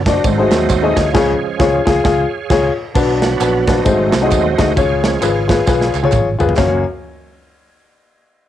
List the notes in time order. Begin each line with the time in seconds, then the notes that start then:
Already playing: F#1
0.06 D4 F#4 C5 D5 D#5, kick, snare, ride, tambourine
0.24 G#1 G#2 F#3 A3 C4, kick, ride, tambourine
0.38 A3 D#4 F#4 G#4 C5
0.51 D#2 D#5, snare, clap, ride, tambourine
0.69 D#2 D#5, kick, clap, ride, tambourine
0.82 A3 D#4 F#4 G#4 D#5
0.96 D2 G#4 C#5 F5, kick, snare, ride, tambourine
1.13 C#2 C#3 F3 G#3 C#4 F4 G#4 C#5, kick, snare, crash
1.59 C#2 F4 G#4 C#5, kick, snare
1.85 C#2 F4 G#4, kick, snare
2.04 C#2 F4 G#4, kick, snare
2.50 C#2 F4 G#4 C#5, kick, snare, crash
2.95 B1 B2 F#3 B3 D4 F#4 B4, kick, crash, tambourine
3.22 D4 F#4 B4, snare, ride, tambourine
3.40 A#1 D4 F#4 B4, clap, ride, tambourine
3.67 D4 F#4 B4 C5 D#5, kick, snare, ride, tambourine
3.85 G#1 G#2 F#3 A3 C4 D#4 F#4 G#4 C5, kick, ride, tambourine
4.12 C2, snare, clap, ride, tambourine
4.21 A3 D#4 F#4 G#4 D#5
4.30 D#2 F#4 C5 D#5, kick, clap, ride, tambourine
4.58 D2 A3 D#4 F#4 G#4 D#5, kick, snare, ride, tambourine
4.76 C#2 C#3 F4 G#4 C#5 F5, kick, ride, tambourine
5.04 F3 G#3 C#4, snare, ride, tambourine
5.21 G#1 F4 G#4 B4, clap, ride, tambourine
5.48 F4 G#4 B4, kick, snare, ride, tambourine
5.66 B1 F4 G#4 B4, kick, snare, tambourine
5.81 snare
5.94 C#2, clap, tambourine
6.03 F4 G#4 C#5, high tom
6.12 G#1, kick, clap, mid tom, tambourine
6.39 G1 F4 G#4 B4, floor tom, tambourine
6.49 floor tom
6.57 F#1 F#2 A#3 C#4 F#4 C#5, kick, snare, clap, crash